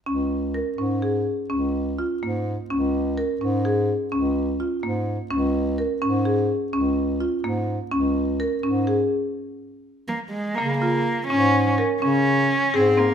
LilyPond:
<<
  \new Staff \with { instrumentName = "Marimba" } { \time 11/8 \key des \major \tempo 4 = 125 des'4 bes'8 des'8 aes'4 des'4 f'8 bes4 | des'4 bes'8 des'8 aes'4 des'4 f'8 bes4 | des'4 bes'8 des'8 aes'4 des'4 f'8 bes4 | des'4 bes'8 des'8 aes'4 r2 r8 |
bes8 f'4 des'4 bes'8 des'4 r8 aes'8 c'8 | }
  \new Staff \with { instrumentName = "Cello" } { \time 11/8 \key des \major r1 r4. | r1 r4. | r1 r4. | r1 r8 bes8 aes8 |
bes8 bes4 des'4 r8 des'4. c'8 bes8 | }
  \new Staff \with { instrumentName = "Bass clarinet" } { \clef bass \time 11/8 \key des \major des,4. aes,4. des,4. aes,4 | des,4. aes,4. des,4. aes,4 | des,4. aes,4. des,4. aes,4 | des,4. aes,4~ aes,16 r2 r8. |
des4. aes,4. des4. aes,4 | }
>>